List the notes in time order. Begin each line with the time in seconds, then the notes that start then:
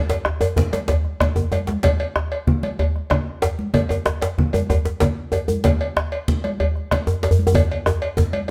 0.09 bombo rim, cowbell, djembe slap
0.25 bombo rim, djembe slap, djembe tone
0.41 cowbell, djembe tone, high conga
0.56 bombo rim, bombo low, djembe tone, high conga, low conga
0.73 cowbell, djembe slap, high conga
0.88 cowbell, djembe slap, djembe tone, djembe bass
1.05 bombo rim, high conga
1.20 bombo rim, bombo low, cowbell, djembe bass, low conga
1.36 djembe tone, djembe bass, low conga
1.52 bombo rim, cowbell, djembe slap, djembe tone, high conga
1.67 djembe slap, high conga
1.83 bombo low, cowbell, djembe slap, high conga, low conga, djembe bass
2.00 cowbell
2.16 bombo rim, djembe slap, djembe tone
2.32 cowbell
2.47 bombo low, low conga
2.63 bombo rim, cowbell, high conga
2.79 bombo rim, cowbell, djembe tone, high conga, djembe bass
2.95 bombo rim, djembe slap, high conga
3.10 bombo rim, bombo low, cowbell, djembe slap, low conga
3.42 cowbell, djembe slap, djembe tone
3.59 high conga
3.74 bombo low, cowbell, high conga, djembe tone, low conga, djembe bass
3.89 cowbell, djembe tone
4.06 bombo rim, djembe slap, djembe tone
4.22 cowbell, djembe slap
4.38 bombo low, low conga
4.53 bombo rim, cowbell, high conga, djembe tone
4.69 bombo rim, cowbell, djembe tone, high conga, djembe bass
4.85 bombo rim, djembe slap, high conga
5.00 bombo low, cowbell, djembe slap, low conga
5.32 cowbell, djembe tone
5.33 djembe tone
5.48 djembe tone, high conga
5.64 bombo low, cowbell, djembe slap, high conga, low conga, djembe bass
5.81 cowbell
5.97 bombo rim, djembe slap, djembe tone
6.12 cowbell
6.28 bombo low, low conga
6.44 bombo rim, cowbell, high conga
6.60 bombo rim, cowbell, djembe tone, high conga, djembe bass
6.76 bombo rim, djembe slap, high conga
6.91 bombo rim, bombo low, cowbell, djembe slap, low conga
7.07 djembe tone
7.23 cowbell, djembe slap, djembe tone
7.31 djembe bass
7.39 high conga
7.47 djembe tone
7.55 bombo low, cowbell, djembe slap, high conga, djembe tone, low conga, djembe bass
7.71 bombo rim, cowbell
7.86 bombo rim, djembe slap, djembe tone
8.02 bombo rim, cowbell, djembe slap
8.17 bombo rim, bombo low, djembe slap, djembe tone, high conga, low conga
8.33 cowbell, high conga